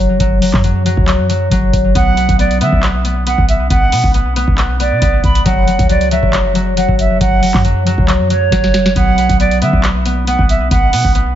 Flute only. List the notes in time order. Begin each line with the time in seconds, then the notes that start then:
1.95 F#5
2.39 D5
2.61 E5
3.26 F#5
3.48 E5
3.70 F#5
4.80 D5
5.24 B5
5.45 F#5
5.90 D5
6.11 E5
6.77 F#5
6.99 E5
7.21 F#5
8.30 C#5
8.96 F#5
9.40 D5
9.62 E5
10.27 F#5
10.49 E5
10.71 F#5